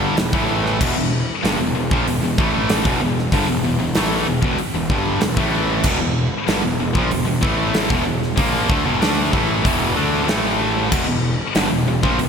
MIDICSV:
0, 0, Header, 1, 6, 480
1, 0, Start_track
1, 0, Tempo, 630915
1, 607, Time_signature, 4, 2, 24, 8
1, 4928, Tempo, 636267
1, 9311, End_track
2, 0, Start_track
2, 0, Title_t, "Distorted electric guitar"
2, 0, Program_c, 0, 30
2, 0, Note_on_c, 0, 43, 90
2, 0, Note_on_c, 0, 50, 108
2, 0, Note_on_c, 0, 55, 95
2, 125, Note_off_c, 0, 43, 0
2, 128, Note_off_c, 0, 50, 0
2, 130, Note_off_c, 0, 55, 0
2, 137, Note_on_c, 0, 40, 62
2, 140, Note_on_c, 0, 47, 77
2, 244, Note_off_c, 0, 47, 0
2, 247, Note_on_c, 0, 45, 94
2, 250, Note_on_c, 0, 52, 106
2, 252, Note_off_c, 0, 40, 0
2, 252, Note_on_c, 0, 57, 103
2, 600, Note_off_c, 0, 45, 0
2, 601, Note_off_c, 0, 52, 0
2, 602, Note_off_c, 0, 57, 0
2, 605, Note_on_c, 0, 40, 104
2, 615, Note_on_c, 0, 47, 125
2, 719, Note_off_c, 0, 40, 0
2, 723, Note_off_c, 0, 47, 0
2, 726, Note_on_c, 0, 40, 72
2, 735, Note_on_c, 0, 47, 79
2, 918, Note_off_c, 0, 40, 0
2, 923, Note_off_c, 0, 47, 0
2, 1086, Note_on_c, 0, 43, 94
2, 1099, Note_on_c, 0, 50, 108
2, 1199, Note_off_c, 0, 43, 0
2, 1205, Note_off_c, 0, 50, 0
2, 1220, Note_on_c, 0, 40, 65
2, 1225, Note_on_c, 0, 47, 80
2, 1320, Note_off_c, 0, 40, 0
2, 1325, Note_off_c, 0, 47, 0
2, 1329, Note_on_c, 0, 40, 72
2, 1334, Note_on_c, 0, 47, 78
2, 1447, Note_off_c, 0, 40, 0
2, 1450, Note_off_c, 0, 47, 0
2, 1455, Note_on_c, 0, 46, 91
2, 1460, Note_on_c, 0, 53, 105
2, 1563, Note_off_c, 0, 46, 0
2, 1566, Note_off_c, 0, 53, 0
2, 1580, Note_on_c, 0, 40, 60
2, 1586, Note_on_c, 0, 47, 69
2, 1692, Note_off_c, 0, 40, 0
2, 1696, Note_off_c, 0, 47, 0
2, 1705, Note_on_c, 0, 40, 68
2, 1710, Note_on_c, 0, 47, 73
2, 1812, Note_off_c, 0, 47, 0
2, 1815, Note_off_c, 0, 40, 0
2, 1815, Note_on_c, 0, 45, 94
2, 1821, Note_on_c, 0, 52, 100
2, 1823, Note_on_c, 0, 57, 97
2, 2163, Note_off_c, 0, 45, 0
2, 2165, Note_off_c, 0, 52, 0
2, 2167, Note_off_c, 0, 57, 0
2, 2175, Note_on_c, 0, 40, 95
2, 2187, Note_on_c, 0, 47, 100
2, 2283, Note_off_c, 0, 40, 0
2, 2286, Note_off_c, 0, 47, 0
2, 2295, Note_on_c, 0, 47, 66
2, 2297, Note_on_c, 0, 40, 67
2, 2482, Note_off_c, 0, 47, 0
2, 2483, Note_off_c, 0, 40, 0
2, 2531, Note_on_c, 0, 43, 107
2, 2536, Note_on_c, 0, 50, 112
2, 2641, Note_off_c, 0, 43, 0
2, 2643, Note_off_c, 0, 50, 0
2, 2652, Note_on_c, 0, 40, 56
2, 2657, Note_on_c, 0, 47, 83
2, 2762, Note_off_c, 0, 40, 0
2, 2762, Note_off_c, 0, 47, 0
2, 2771, Note_on_c, 0, 47, 75
2, 2772, Note_on_c, 0, 40, 64
2, 2878, Note_off_c, 0, 40, 0
2, 2881, Note_off_c, 0, 47, 0
2, 2888, Note_on_c, 0, 40, 68
2, 2890, Note_on_c, 0, 47, 78
2, 3006, Note_off_c, 0, 40, 0
2, 3008, Note_off_c, 0, 47, 0
2, 3013, Note_on_c, 0, 45, 94
2, 3016, Note_on_c, 0, 52, 105
2, 3019, Note_on_c, 0, 57, 101
2, 3242, Note_off_c, 0, 45, 0
2, 3244, Note_off_c, 0, 52, 0
2, 3245, Note_off_c, 0, 57, 0
2, 3247, Note_on_c, 0, 47, 75
2, 3252, Note_on_c, 0, 40, 65
2, 3350, Note_off_c, 0, 40, 0
2, 3360, Note_off_c, 0, 47, 0
2, 3360, Note_on_c, 0, 40, 83
2, 3370, Note_on_c, 0, 47, 97
2, 3475, Note_off_c, 0, 40, 0
2, 3480, Note_off_c, 0, 47, 0
2, 3609, Note_on_c, 0, 40, 57
2, 3613, Note_on_c, 0, 47, 66
2, 3724, Note_off_c, 0, 40, 0
2, 3727, Note_on_c, 0, 43, 81
2, 3728, Note_off_c, 0, 47, 0
2, 3731, Note_on_c, 0, 50, 100
2, 3732, Note_on_c, 0, 55, 92
2, 3955, Note_off_c, 0, 43, 0
2, 3958, Note_on_c, 0, 40, 65
2, 3961, Note_off_c, 0, 50, 0
2, 3962, Note_off_c, 0, 55, 0
2, 3964, Note_on_c, 0, 47, 79
2, 4078, Note_off_c, 0, 47, 0
2, 4081, Note_on_c, 0, 45, 86
2, 4082, Note_off_c, 0, 40, 0
2, 4082, Note_on_c, 0, 52, 97
2, 4090, Note_on_c, 0, 57, 91
2, 4437, Note_off_c, 0, 45, 0
2, 4437, Note_on_c, 0, 40, 104
2, 4438, Note_off_c, 0, 52, 0
2, 4442, Note_off_c, 0, 57, 0
2, 4447, Note_on_c, 0, 47, 115
2, 4542, Note_off_c, 0, 40, 0
2, 4551, Note_on_c, 0, 40, 64
2, 4552, Note_off_c, 0, 47, 0
2, 4561, Note_on_c, 0, 47, 74
2, 4752, Note_off_c, 0, 40, 0
2, 4757, Note_off_c, 0, 47, 0
2, 4920, Note_on_c, 0, 43, 94
2, 4927, Note_on_c, 0, 50, 97
2, 5037, Note_off_c, 0, 43, 0
2, 5040, Note_off_c, 0, 50, 0
2, 5046, Note_on_c, 0, 40, 60
2, 5050, Note_on_c, 0, 47, 63
2, 5161, Note_off_c, 0, 40, 0
2, 5162, Note_off_c, 0, 47, 0
2, 5170, Note_on_c, 0, 40, 68
2, 5171, Note_on_c, 0, 47, 69
2, 5269, Note_off_c, 0, 47, 0
2, 5272, Note_on_c, 0, 46, 94
2, 5278, Note_on_c, 0, 53, 107
2, 5288, Note_off_c, 0, 40, 0
2, 5392, Note_off_c, 0, 46, 0
2, 5394, Note_on_c, 0, 40, 63
2, 5395, Note_off_c, 0, 53, 0
2, 5396, Note_on_c, 0, 47, 70
2, 5501, Note_off_c, 0, 40, 0
2, 5506, Note_off_c, 0, 47, 0
2, 5510, Note_on_c, 0, 40, 60
2, 5515, Note_on_c, 0, 47, 70
2, 5629, Note_off_c, 0, 47, 0
2, 5632, Note_on_c, 0, 45, 90
2, 5638, Note_off_c, 0, 40, 0
2, 5641, Note_on_c, 0, 52, 103
2, 5643, Note_on_c, 0, 57, 109
2, 5988, Note_on_c, 0, 40, 91
2, 5991, Note_off_c, 0, 45, 0
2, 5995, Note_off_c, 0, 52, 0
2, 5996, Note_off_c, 0, 57, 0
2, 5997, Note_on_c, 0, 47, 100
2, 6102, Note_off_c, 0, 40, 0
2, 6106, Note_off_c, 0, 47, 0
2, 6111, Note_on_c, 0, 40, 58
2, 6115, Note_on_c, 0, 47, 68
2, 6310, Note_off_c, 0, 40, 0
2, 6311, Note_off_c, 0, 47, 0
2, 6350, Note_on_c, 0, 46, 104
2, 6356, Note_on_c, 0, 58, 113
2, 6358, Note_on_c, 0, 53, 115
2, 6582, Note_off_c, 0, 46, 0
2, 6585, Note_on_c, 0, 50, 98
2, 6588, Note_off_c, 0, 53, 0
2, 6591, Note_on_c, 0, 57, 110
2, 6593, Note_off_c, 0, 58, 0
2, 6707, Note_off_c, 0, 50, 0
2, 6710, Note_off_c, 0, 57, 0
2, 6710, Note_on_c, 0, 40, 92
2, 6718, Note_on_c, 0, 47, 98
2, 6820, Note_off_c, 0, 47, 0
2, 6823, Note_on_c, 0, 50, 97
2, 6826, Note_on_c, 0, 57, 106
2, 6829, Note_off_c, 0, 40, 0
2, 6836, Note_on_c, 0, 62, 114
2, 7063, Note_off_c, 0, 50, 0
2, 7066, Note_on_c, 0, 45, 94
2, 7067, Note_off_c, 0, 57, 0
2, 7070, Note_on_c, 0, 52, 100
2, 7072, Note_off_c, 0, 62, 0
2, 7075, Note_on_c, 0, 57, 103
2, 7306, Note_on_c, 0, 40, 83
2, 7308, Note_off_c, 0, 45, 0
2, 7310, Note_off_c, 0, 52, 0
2, 7313, Note_off_c, 0, 57, 0
2, 7313, Note_on_c, 0, 47, 100
2, 7322, Note_on_c, 0, 52, 104
2, 7548, Note_off_c, 0, 40, 0
2, 7551, Note_off_c, 0, 47, 0
2, 7554, Note_on_c, 0, 50, 98
2, 7555, Note_off_c, 0, 52, 0
2, 7558, Note_on_c, 0, 57, 96
2, 7564, Note_on_c, 0, 62, 104
2, 7782, Note_off_c, 0, 50, 0
2, 7782, Note_on_c, 0, 45, 83
2, 7791, Note_off_c, 0, 57, 0
2, 7791, Note_on_c, 0, 52, 102
2, 7794, Note_off_c, 0, 62, 0
2, 7794, Note_on_c, 0, 57, 104
2, 8263, Note_on_c, 0, 40, 108
2, 8265, Note_off_c, 0, 45, 0
2, 8268, Note_on_c, 0, 47, 115
2, 8272, Note_off_c, 0, 52, 0
2, 8273, Note_off_c, 0, 57, 0
2, 8387, Note_off_c, 0, 40, 0
2, 8390, Note_off_c, 0, 47, 0
2, 8399, Note_on_c, 0, 40, 65
2, 8403, Note_on_c, 0, 47, 69
2, 8595, Note_off_c, 0, 40, 0
2, 8597, Note_off_c, 0, 47, 0
2, 8762, Note_on_c, 0, 43, 105
2, 8765, Note_on_c, 0, 50, 125
2, 8871, Note_off_c, 0, 43, 0
2, 8874, Note_off_c, 0, 50, 0
2, 8874, Note_on_c, 0, 40, 64
2, 8877, Note_on_c, 0, 47, 64
2, 8993, Note_off_c, 0, 40, 0
2, 8995, Note_off_c, 0, 47, 0
2, 9002, Note_on_c, 0, 40, 72
2, 9004, Note_on_c, 0, 47, 73
2, 9113, Note_off_c, 0, 47, 0
2, 9116, Note_on_c, 0, 46, 85
2, 9117, Note_on_c, 0, 53, 99
2, 9126, Note_off_c, 0, 40, 0
2, 9232, Note_on_c, 0, 40, 62
2, 9235, Note_off_c, 0, 46, 0
2, 9236, Note_off_c, 0, 53, 0
2, 9239, Note_on_c, 0, 47, 69
2, 9311, Note_off_c, 0, 40, 0
2, 9311, Note_off_c, 0, 47, 0
2, 9311, End_track
3, 0, Start_track
3, 0, Title_t, "Picked electric bass"
3, 0, Program_c, 1, 34
3, 0, Note_on_c, 1, 31, 93
3, 116, Note_off_c, 1, 31, 0
3, 137, Note_on_c, 1, 28, 82
3, 244, Note_off_c, 1, 28, 0
3, 253, Note_on_c, 1, 33, 101
3, 585, Note_off_c, 1, 33, 0
3, 614, Note_on_c, 1, 28, 94
3, 722, Note_off_c, 1, 28, 0
3, 736, Note_on_c, 1, 28, 78
3, 955, Note_off_c, 1, 28, 0
3, 1096, Note_on_c, 1, 31, 90
3, 1203, Note_off_c, 1, 31, 0
3, 1209, Note_on_c, 1, 28, 91
3, 1319, Note_off_c, 1, 28, 0
3, 1322, Note_on_c, 1, 28, 77
3, 1436, Note_off_c, 1, 28, 0
3, 1454, Note_on_c, 1, 34, 100
3, 1561, Note_off_c, 1, 34, 0
3, 1567, Note_on_c, 1, 28, 79
3, 1678, Note_off_c, 1, 28, 0
3, 1688, Note_on_c, 1, 28, 84
3, 1798, Note_off_c, 1, 28, 0
3, 1815, Note_on_c, 1, 33, 98
3, 2145, Note_off_c, 1, 33, 0
3, 2172, Note_on_c, 1, 28, 98
3, 2280, Note_off_c, 1, 28, 0
3, 2293, Note_on_c, 1, 28, 85
3, 2512, Note_off_c, 1, 28, 0
3, 2530, Note_on_c, 1, 31, 90
3, 2639, Note_off_c, 1, 31, 0
3, 2651, Note_on_c, 1, 28, 84
3, 2760, Note_off_c, 1, 28, 0
3, 2779, Note_on_c, 1, 28, 70
3, 2884, Note_off_c, 1, 28, 0
3, 2894, Note_on_c, 1, 28, 84
3, 3002, Note_off_c, 1, 28, 0
3, 3012, Note_on_c, 1, 33, 95
3, 3232, Note_off_c, 1, 33, 0
3, 3254, Note_on_c, 1, 28, 74
3, 3362, Note_off_c, 1, 28, 0
3, 3369, Note_on_c, 1, 28, 98
3, 3479, Note_off_c, 1, 28, 0
3, 3610, Note_on_c, 1, 28, 83
3, 3720, Note_off_c, 1, 28, 0
3, 3728, Note_on_c, 1, 31, 89
3, 3950, Note_off_c, 1, 31, 0
3, 3967, Note_on_c, 1, 28, 75
3, 4078, Note_off_c, 1, 28, 0
3, 4087, Note_on_c, 1, 33, 91
3, 4422, Note_off_c, 1, 33, 0
3, 4450, Note_on_c, 1, 28, 93
3, 4560, Note_off_c, 1, 28, 0
3, 4571, Note_on_c, 1, 28, 75
3, 4793, Note_off_c, 1, 28, 0
3, 4929, Note_on_c, 1, 31, 89
3, 5040, Note_off_c, 1, 31, 0
3, 5055, Note_on_c, 1, 28, 75
3, 5163, Note_off_c, 1, 28, 0
3, 5168, Note_on_c, 1, 28, 73
3, 5279, Note_off_c, 1, 28, 0
3, 5286, Note_on_c, 1, 34, 96
3, 5398, Note_off_c, 1, 34, 0
3, 5412, Note_on_c, 1, 28, 80
3, 5521, Note_off_c, 1, 28, 0
3, 5528, Note_on_c, 1, 28, 79
3, 5638, Note_off_c, 1, 28, 0
3, 5646, Note_on_c, 1, 33, 97
3, 5980, Note_off_c, 1, 33, 0
3, 6003, Note_on_c, 1, 28, 99
3, 6115, Note_off_c, 1, 28, 0
3, 6124, Note_on_c, 1, 28, 79
3, 6347, Note_off_c, 1, 28, 0
3, 6359, Note_on_c, 1, 34, 92
3, 6585, Note_off_c, 1, 34, 0
3, 6601, Note_on_c, 1, 38, 91
3, 6714, Note_off_c, 1, 38, 0
3, 6724, Note_on_c, 1, 28, 91
3, 6835, Note_off_c, 1, 28, 0
3, 6847, Note_on_c, 1, 38, 96
3, 7069, Note_off_c, 1, 38, 0
3, 7085, Note_on_c, 1, 33, 102
3, 7308, Note_off_c, 1, 33, 0
3, 7322, Note_on_c, 1, 28, 94
3, 7547, Note_off_c, 1, 28, 0
3, 7559, Note_on_c, 1, 38, 92
3, 7785, Note_off_c, 1, 38, 0
3, 7806, Note_on_c, 1, 33, 105
3, 8256, Note_off_c, 1, 33, 0
3, 8283, Note_on_c, 1, 28, 94
3, 8396, Note_off_c, 1, 28, 0
3, 8402, Note_on_c, 1, 28, 77
3, 8628, Note_off_c, 1, 28, 0
3, 8759, Note_on_c, 1, 31, 96
3, 8873, Note_off_c, 1, 31, 0
3, 8877, Note_on_c, 1, 28, 82
3, 8989, Note_off_c, 1, 28, 0
3, 8993, Note_on_c, 1, 28, 84
3, 9112, Note_off_c, 1, 28, 0
3, 9119, Note_on_c, 1, 34, 99
3, 9230, Note_off_c, 1, 34, 0
3, 9235, Note_on_c, 1, 28, 77
3, 9311, Note_off_c, 1, 28, 0
3, 9311, End_track
4, 0, Start_track
4, 0, Title_t, "Muted distorted electric guitar strokes"
4, 3491, Note_on_c, 9, 29, 57
4, 3567, Note_off_c, 9, 29, 0
4, 9311, End_track
5, 0, Start_track
5, 0, Title_t, "Muted picked electric bass strokes"
5, 3494, Note_on_c, 9, 29, 39
5, 3570, Note_off_c, 9, 29, 0
5, 9311, End_track
6, 0, Start_track
6, 0, Title_t, "Drums"
6, 130, Note_on_c, 9, 46, 59
6, 136, Note_on_c, 9, 38, 112
6, 206, Note_off_c, 9, 46, 0
6, 212, Note_off_c, 9, 38, 0
6, 252, Note_on_c, 9, 36, 112
6, 328, Note_off_c, 9, 36, 0
6, 499, Note_on_c, 9, 38, 30
6, 575, Note_off_c, 9, 38, 0
6, 615, Note_on_c, 9, 36, 119
6, 617, Note_on_c, 9, 49, 105
6, 691, Note_off_c, 9, 36, 0
6, 693, Note_off_c, 9, 49, 0
6, 1101, Note_on_c, 9, 46, 65
6, 1107, Note_on_c, 9, 38, 114
6, 1177, Note_off_c, 9, 46, 0
6, 1183, Note_off_c, 9, 38, 0
6, 1455, Note_on_c, 9, 36, 111
6, 1531, Note_off_c, 9, 36, 0
6, 1578, Note_on_c, 9, 46, 56
6, 1654, Note_off_c, 9, 46, 0
6, 1813, Note_on_c, 9, 36, 118
6, 1889, Note_off_c, 9, 36, 0
6, 2049, Note_on_c, 9, 46, 68
6, 2055, Note_on_c, 9, 38, 110
6, 2125, Note_off_c, 9, 46, 0
6, 2131, Note_off_c, 9, 38, 0
6, 2170, Note_on_c, 9, 36, 107
6, 2246, Note_off_c, 9, 36, 0
6, 2421, Note_on_c, 9, 38, 32
6, 2497, Note_off_c, 9, 38, 0
6, 2527, Note_on_c, 9, 36, 104
6, 2527, Note_on_c, 9, 46, 72
6, 2603, Note_off_c, 9, 36, 0
6, 2603, Note_off_c, 9, 46, 0
6, 3002, Note_on_c, 9, 46, 70
6, 3009, Note_on_c, 9, 38, 114
6, 3079, Note_off_c, 9, 46, 0
6, 3085, Note_off_c, 9, 38, 0
6, 3366, Note_on_c, 9, 36, 112
6, 3442, Note_off_c, 9, 36, 0
6, 3486, Note_on_c, 9, 46, 53
6, 3562, Note_off_c, 9, 46, 0
6, 3727, Note_on_c, 9, 36, 112
6, 3803, Note_off_c, 9, 36, 0
6, 3963, Note_on_c, 9, 46, 56
6, 3969, Note_on_c, 9, 38, 108
6, 4039, Note_off_c, 9, 46, 0
6, 4045, Note_off_c, 9, 38, 0
6, 4085, Note_on_c, 9, 36, 110
6, 4161, Note_off_c, 9, 36, 0
6, 4439, Note_on_c, 9, 57, 95
6, 4446, Note_on_c, 9, 36, 111
6, 4515, Note_off_c, 9, 57, 0
6, 4522, Note_off_c, 9, 36, 0
6, 4929, Note_on_c, 9, 46, 59
6, 4935, Note_on_c, 9, 38, 117
6, 5004, Note_off_c, 9, 46, 0
6, 5010, Note_off_c, 9, 38, 0
6, 5286, Note_on_c, 9, 36, 110
6, 5361, Note_off_c, 9, 36, 0
6, 5406, Note_on_c, 9, 46, 59
6, 5481, Note_off_c, 9, 46, 0
6, 5645, Note_on_c, 9, 36, 112
6, 5720, Note_off_c, 9, 36, 0
6, 5882, Note_on_c, 9, 46, 63
6, 5888, Note_on_c, 9, 38, 111
6, 5957, Note_off_c, 9, 46, 0
6, 5963, Note_off_c, 9, 38, 0
6, 6003, Note_on_c, 9, 36, 109
6, 6079, Note_off_c, 9, 36, 0
6, 6245, Note_on_c, 9, 38, 30
6, 6320, Note_off_c, 9, 38, 0
6, 6357, Note_on_c, 9, 46, 68
6, 6360, Note_on_c, 9, 36, 116
6, 6433, Note_off_c, 9, 46, 0
6, 6435, Note_off_c, 9, 36, 0
6, 6601, Note_on_c, 9, 36, 107
6, 6677, Note_off_c, 9, 36, 0
6, 6845, Note_on_c, 9, 46, 69
6, 6851, Note_on_c, 9, 38, 122
6, 6921, Note_off_c, 9, 46, 0
6, 6927, Note_off_c, 9, 38, 0
6, 7082, Note_on_c, 9, 36, 99
6, 7157, Note_off_c, 9, 36, 0
6, 7322, Note_on_c, 9, 36, 102
6, 7328, Note_on_c, 9, 46, 60
6, 7397, Note_off_c, 9, 36, 0
6, 7403, Note_off_c, 9, 46, 0
6, 7800, Note_on_c, 9, 46, 54
6, 7806, Note_on_c, 9, 38, 111
6, 7876, Note_off_c, 9, 46, 0
6, 7882, Note_off_c, 9, 38, 0
6, 8278, Note_on_c, 9, 49, 105
6, 8279, Note_on_c, 9, 36, 106
6, 8353, Note_off_c, 9, 49, 0
6, 8355, Note_off_c, 9, 36, 0
6, 8754, Note_on_c, 9, 46, 64
6, 8760, Note_on_c, 9, 38, 122
6, 8829, Note_off_c, 9, 46, 0
6, 8835, Note_off_c, 9, 38, 0
6, 9119, Note_on_c, 9, 36, 101
6, 9195, Note_off_c, 9, 36, 0
6, 9238, Note_on_c, 9, 46, 54
6, 9311, Note_off_c, 9, 46, 0
6, 9311, End_track
0, 0, End_of_file